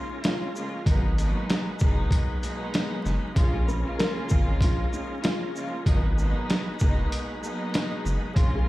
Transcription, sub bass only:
0.86 1.34 G#1 loud
1.81 2.05 F#1 loud
3.05 3.19 F#1 medium
3.36 3.84 A#1 loud
4.31 4.55 G#1 loud
4.61 4.85 A#1 loud
5.86 6.34 G#1 loud
6.82 7.05 F#1 loud
8.05 8.19 F#1 medium
8.36 8.69 A#1 loud

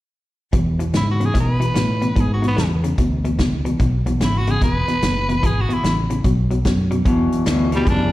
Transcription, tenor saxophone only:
0.97 1.09 E4 medium
1.11 1.27 F#4 medium
1.25 1.37 G#4 medium
1.40 2.22 B4 medium
2.20 2.32 G#4 medium
2.33 2.45 F#4 medium
2.48 2.68 B3 medium
4.24 4.39 E4 medium
4.38 4.52 F#4 medium
4.50 4.62 G#4 medium
4.63 5.47 B4 loud
5.46 5.62 G#4 medium
5.60 5.75 F#4 medium
5.74 5.94 E4 medium
7.75 7.88 G3 medium
7.90 8.12 D4 medium

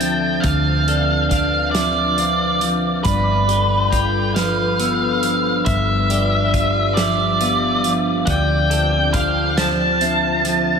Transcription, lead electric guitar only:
0.00 0.44 G5 medium
0.40 1.26 F5 medium
1.30 1.71 F5 medium
1.71 2.67 D5 medium
3.04 3.94 B4 medium
3.90 4.32 G5 medium
4.35 5.65 F5 medium
5.65 7.00 E5 medium
6.94 7.89 D5 medium
8.26 9.16 G5 medium
9.13 9.59 F5 medium
9.57 10.79 A5 medium

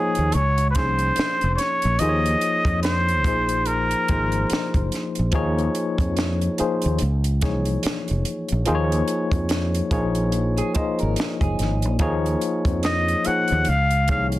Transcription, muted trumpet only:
0.00 0.35 G#4 medium
0.33 0.69 C#5 medium
0.71 0.76 B4 medium
0.75 1.54 C5 medium
1.54 1.59 C5 medium
1.54 2.01 C#5 medium
1.99 2.82 D#5 medium
2.83 3.68 C5 medium
3.66 4.91 A#4 medium
12.85 13.28 D#5 medium
13.27 13.70 F#5 medium
13.69 14.09 F5 medium
14.11 14.27 F5 medium

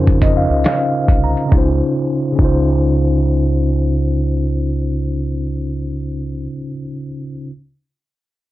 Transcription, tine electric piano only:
0.00 1.46 C#3 medium
0.00 1.49 C#4 medium
0.00 1.52 D#4 medium
0.00 1.54 F4 medium
0.00 1.54 A#4 medium
0.00 1.53 C5 medium
0.23 0.36 D#5 medium
0.37 0.63 F5 medium
0.66 1.20 F5 medium
1.24 1.50 A#5 medium
1.46 1.77 C#3 medium
1.46 1.79 C#4 medium
1.52 1.80 D#4 medium
1.52 1.82 F4 medium
1.58 1.84 C5 medium
2.32 6.42 C#3 medium
2.32 6.44 C#4 medium
2.39 6.46 D#4 medium
2.39 6.47 F4 medium
2.45 6.49 C5 medium

